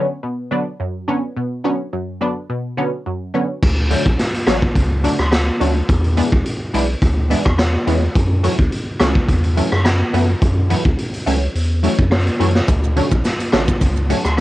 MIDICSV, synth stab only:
0, 0, Header, 1, 2, 480
1, 0, Start_track
1, 0, Tempo, 566038
1, 1155, Time_signature, 4, 2, 24, 8
1, 12215, End_track
2, 0, Start_track
2, 0, Title_t, "Synth stab"
2, 0, Program_c, 0, 62
2, 196, Note_on_c, 0, 47, 82
2, 433, Note_on_c, 0, 50, 89
2, 435, Note_on_c, 0, 54, 82
2, 437, Note_on_c, 0, 59, 84
2, 440, Note_on_c, 0, 62, 94
2, 536, Note_off_c, 0, 50, 0
2, 537, Note_off_c, 0, 54, 0
2, 538, Note_off_c, 0, 59, 0
2, 539, Note_off_c, 0, 62, 0
2, 558, Note_off_c, 0, 47, 0
2, 676, Note_on_c, 0, 42, 86
2, 914, Note_on_c, 0, 50, 83
2, 916, Note_on_c, 0, 54, 80
2, 918, Note_on_c, 0, 59, 79
2, 921, Note_on_c, 0, 61, 93
2, 1016, Note_off_c, 0, 50, 0
2, 1018, Note_off_c, 0, 54, 0
2, 1018, Note_off_c, 0, 59, 0
2, 1020, Note_off_c, 0, 61, 0
2, 1038, Note_off_c, 0, 42, 0
2, 1157, Note_on_c, 0, 47, 82
2, 1392, Note_on_c, 0, 50, 83
2, 1395, Note_on_c, 0, 54, 81
2, 1397, Note_on_c, 0, 59, 78
2, 1400, Note_on_c, 0, 61, 94
2, 1495, Note_off_c, 0, 50, 0
2, 1497, Note_off_c, 0, 54, 0
2, 1498, Note_off_c, 0, 59, 0
2, 1500, Note_off_c, 0, 61, 0
2, 1519, Note_off_c, 0, 47, 0
2, 1636, Note_on_c, 0, 42, 79
2, 1872, Note_on_c, 0, 50, 82
2, 1875, Note_on_c, 0, 54, 77
2, 1877, Note_on_c, 0, 59, 75
2, 1880, Note_on_c, 0, 62, 95
2, 1976, Note_off_c, 0, 50, 0
2, 1977, Note_off_c, 0, 54, 0
2, 1978, Note_off_c, 0, 59, 0
2, 1980, Note_off_c, 0, 62, 0
2, 1998, Note_off_c, 0, 42, 0
2, 2116, Note_on_c, 0, 47, 85
2, 2353, Note_on_c, 0, 50, 88
2, 2355, Note_on_c, 0, 54, 78
2, 2357, Note_on_c, 0, 59, 83
2, 2359, Note_on_c, 0, 61, 98
2, 2456, Note_off_c, 0, 50, 0
2, 2457, Note_off_c, 0, 54, 0
2, 2458, Note_off_c, 0, 59, 0
2, 2459, Note_off_c, 0, 61, 0
2, 2478, Note_off_c, 0, 47, 0
2, 2597, Note_on_c, 0, 42, 80
2, 2832, Note_on_c, 0, 50, 86
2, 2834, Note_on_c, 0, 54, 79
2, 2837, Note_on_c, 0, 59, 78
2, 2840, Note_on_c, 0, 61, 95
2, 2935, Note_off_c, 0, 50, 0
2, 2937, Note_off_c, 0, 54, 0
2, 2938, Note_off_c, 0, 59, 0
2, 2939, Note_off_c, 0, 61, 0
2, 2959, Note_off_c, 0, 42, 0
2, 3313, Note_on_c, 0, 50, 85
2, 3315, Note_on_c, 0, 54, 78
2, 3317, Note_on_c, 0, 57, 78
2, 3320, Note_on_c, 0, 61, 97
2, 3416, Note_off_c, 0, 50, 0
2, 3417, Note_off_c, 0, 54, 0
2, 3418, Note_off_c, 0, 57, 0
2, 3420, Note_off_c, 0, 61, 0
2, 3792, Note_on_c, 0, 50, 88
2, 3796, Note_on_c, 0, 54, 82
2, 3798, Note_on_c, 0, 57, 82
2, 3801, Note_on_c, 0, 61, 98
2, 3896, Note_off_c, 0, 50, 0
2, 3897, Note_off_c, 0, 54, 0
2, 3899, Note_off_c, 0, 57, 0
2, 3900, Note_off_c, 0, 61, 0
2, 4272, Note_on_c, 0, 50, 92
2, 4275, Note_on_c, 0, 54, 81
2, 4278, Note_on_c, 0, 57, 82
2, 4280, Note_on_c, 0, 62, 99
2, 4376, Note_off_c, 0, 50, 0
2, 4377, Note_off_c, 0, 54, 0
2, 4378, Note_off_c, 0, 57, 0
2, 4380, Note_off_c, 0, 62, 0
2, 4752, Note_on_c, 0, 50, 86
2, 4755, Note_on_c, 0, 54, 81
2, 4757, Note_on_c, 0, 57, 81
2, 4759, Note_on_c, 0, 61, 97
2, 4856, Note_off_c, 0, 50, 0
2, 4857, Note_off_c, 0, 54, 0
2, 4858, Note_off_c, 0, 57, 0
2, 4859, Note_off_c, 0, 61, 0
2, 5232, Note_on_c, 0, 52, 84
2, 5234, Note_on_c, 0, 56, 81
2, 5237, Note_on_c, 0, 59, 77
2, 5239, Note_on_c, 0, 62, 97
2, 5335, Note_off_c, 0, 52, 0
2, 5337, Note_off_c, 0, 56, 0
2, 5338, Note_off_c, 0, 59, 0
2, 5339, Note_off_c, 0, 62, 0
2, 5712, Note_on_c, 0, 52, 89
2, 5715, Note_on_c, 0, 56, 80
2, 5717, Note_on_c, 0, 59, 81
2, 5720, Note_on_c, 0, 62, 95
2, 5815, Note_off_c, 0, 52, 0
2, 5817, Note_off_c, 0, 56, 0
2, 5818, Note_off_c, 0, 59, 0
2, 5819, Note_off_c, 0, 62, 0
2, 6191, Note_on_c, 0, 52, 94
2, 6194, Note_on_c, 0, 56, 85
2, 6195, Note_on_c, 0, 59, 82
2, 6198, Note_on_c, 0, 62, 97
2, 6295, Note_off_c, 0, 52, 0
2, 6296, Note_off_c, 0, 56, 0
2, 6297, Note_off_c, 0, 59, 0
2, 6298, Note_off_c, 0, 62, 0
2, 6672, Note_on_c, 0, 52, 89
2, 6674, Note_on_c, 0, 56, 83
2, 6677, Note_on_c, 0, 59, 82
2, 6679, Note_on_c, 0, 61, 98
2, 6775, Note_off_c, 0, 52, 0
2, 6777, Note_off_c, 0, 56, 0
2, 6778, Note_off_c, 0, 59, 0
2, 6779, Note_off_c, 0, 61, 0
2, 7152, Note_on_c, 0, 52, 90
2, 7155, Note_on_c, 0, 54, 81
2, 7158, Note_on_c, 0, 57, 77
2, 7159, Note_on_c, 0, 61, 93
2, 7255, Note_off_c, 0, 52, 0
2, 7257, Note_off_c, 0, 54, 0
2, 7258, Note_off_c, 0, 57, 0
2, 7259, Note_off_c, 0, 61, 0
2, 7632, Note_on_c, 0, 52, 86
2, 7635, Note_on_c, 0, 54, 79
2, 7638, Note_on_c, 0, 57, 81
2, 7640, Note_on_c, 0, 61, 95
2, 7736, Note_off_c, 0, 52, 0
2, 7737, Note_off_c, 0, 54, 0
2, 7738, Note_off_c, 0, 57, 0
2, 7739, Note_off_c, 0, 61, 0
2, 8113, Note_on_c, 0, 52, 88
2, 8115, Note_on_c, 0, 54, 83
2, 8118, Note_on_c, 0, 57, 80
2, 8121, Note_on_c, 0, 61, 104
2, 8216, Note_off_c, 0, 52, 0
2, 8217, Note_off_c, 0, 54, 0
2, 8219, Note_off_c, 0, 57, 0
2, 8220, Note_off_c, 0, 61, 0
2, 8593, Note_on_c, 0, 52, 85
2, 8595, Note_on_c, 0, 54, 79
2, 8598, Note_on_c, 0, 57, 80
2, 8600, Note_on_c, 0, 59, 94
2, 8696, Note_off_c, 0, 52, 0
2, 8697, Note_off_c, 0, 54, 0
2, 8698, Note_off_c, 0, 57, 0
2, 8699, Note_off_c, 0, 59, 0
2, 9073, Note_on_c, 0, 52, 85
2, 9075, Note_on_c, 0, 54, 81
2, 9078, Note_on_c, 0, 57, 80
2, 9081, Note_on_c, 0, 59, 100
2, 9176, Note_off_c, 0, 52, 0
2, 9177, Note_off_c, 0, 54, 0
2, 9178, Note_off_c, 0, 57, 0
2, 9180, Note_off_c, 0, 59, 0
2, 9552, Note_on_c, 0, 52, 86
2, 9554, Note_on_c, 0, 54, 80
2, 9557, Note_on_c, 0, 57, 79
2, 9559, Note_on_c, 0, 61, 97
2, 9655, Note_off_c, 0, 52, 0
2, 9657, Note_off_c, 0, 54, 0
2, 9658, Note_off_c, 0, 57, 0
2, 9659, Note_off_c, 0, 61, 0
2, 10033, Note_on_c, 0, 52, 89
2, 10035, Note_on_c, 0, 54, 78
2, 10038, Note_on_c, 0, 57, 80
2, 10041, Note_on_c, 0, 61, 97
2, 10136, Note_off_c, 0, 52, 0
2, 10137, Note_off_c, 0, 54, 0
2, 10138, Note_off_c, 0, 57, 0
2, 10140, Note_off_c, 0, 61, 0
2, 10512, Note_on_c, 0, 52, 89
2, 10514, Note_on_c, 0, 54, 80
2, 10517, Note_on_c, 0, 57, 83
2, 10520, Note_on_c, 0, 61, 100
2, 10616, Note_off_c, 0, 52, 0
2, 10617, Note_off_c, 0, 54, 0
2, 10618, Note_off_c, 0, 57, 0
2, 10619, Note_off_c, 0, 61, 0
2, 10993, Note_on_c, 0, 50, 88
2, 10996, Note_on_c, 0, 54, 81
2, 10998, Note_on_c, 0, 57, 78
2, 11000, Note_on_c, 0, 61, 94
2, 11096, Note_off_c, 0, 50, 0
2, 11097, Note_off_c, 0, 54, 0
2, 11098, Note_off_c, 0, 57, 0
2, 11100, Note_off_c, 0, 61, 0
2, 11472, Note_on_c, 0, 50, 84
2, 11475, Note_on_c, 0, 54, 83
2, 11477, Note_on_c, 0, 57, 81
2, 11479, Note_on_c, 0, 61, 95
2, 11576, Note_off_c, 0, 50, 0
2, 11577, Note_off_c, 0, 54, 0
2, 11578, Note_off_c, 0, 57, 0
2, 11579, Note_off_c, 0, 61, 0
2, 11953, Note_on_c, 0, 50, 89
2, 11956, Note_on_c, 0, 54, 83
2, 11958, Note_on_c, 0, 57, 79
2, 11960, Note_on_c, 0, 61, 98
2, 12056, Note_off_c, 0, 50, 0
2, 12057, Note_off_c, 0, 54, 0
2, 12058, Note_off_c, 0, 57, 0
2, 12060, Note_off_c, 0, 61, 0
2, 12215, End_track
0, 0, End_of_file